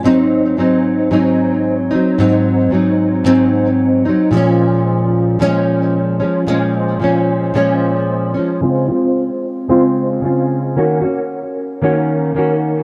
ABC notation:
X:1
M:4/4
L:1/8
Q:"Swing 16ths" 1/4=112
K:Db
V:1 name="Nylon-string guitar"
[A,,G,CE]2 [A,,G,CE]2 [A,,G,CE]3 [G,CE] | [A,,G,CE]2 [A,,G,CE]2 [A,,G,CE]3 [G,CE] | [B,,F,A,D]4 [B,,F,A,D]3 [F,A,D] | [B,,F,A,D]2 [B,,F,A,D]2 [B,,F,A,D]3 [F,A,D] |
[D,A,CF] [A,CF]3 [D,A,CF]2 [D,A,CF]2 | [E,B,DG] [B,DG]3 [E,B,DG]2 [E,B,DG]2 |]